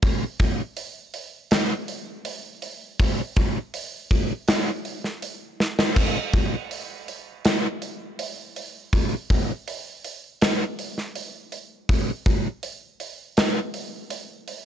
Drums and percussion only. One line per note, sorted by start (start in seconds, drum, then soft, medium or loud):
0.02 kick loud
0.02 open hi-hat medium
0.40 kick medium
0.40 open hi-hat soft
0.77 open hi-hat medium
1.14 open hi-hat medium
1.51 snare medium
1.51 open hi-hat medium
1.88 open hi-hat medium
2.25 open hi-hat medium
2.62 open hi-hat medium
3.00 kick medium
3.00 open hi-hat medium
3.36 kick medium
3.36 open hi-hat medium
3.74 open hi-hat medium
4.11 kick medium
4.11 open hi-hat medium
4.48 snare loud
4.48 open hi-hat medium
4.85 open hi-hat medium
5.04 snare soft
5.22 open hi-hat medium
5.60 snare medium
5.79 snare medium
5.96 kick loud
5.96 open hi-hat medium
5.96 crash medium
6.34 kick medium
6.34 open hi-hat medium
6.71 open hi-hat medium
7.08 open hi-hat medium
7.45 snare loud
7.45 open hi-hat medium
7.82 open hi-hat medium
8.19 open hi-hat medium
8.56 open hi-hat medium
8.93 kick loud
8.93 open hi-hat medium
9.30 kick medium
9.30 open hi-hat medium
9.68 open hi-hat medium
10.04 open hi-hat medium
10.41 snare loud
10.41 open hi-hat medium
10.79 open hi-hat medium
10.98 snare soft
11.15 open hi-hat medium
11.52 open hi-hat medium
11.89 kick loud
11.89 open hi-hat medium
12.26 kick medium
12.26 open hi-hat medium
12.63 open hi-hat medium
13.00 open hi-hat medium
13.37 snare loud
13.37 open hi-hat medium
13.74 open hi-hat medium
14.10 open hi-hat medium
14.48 open hi-hat medium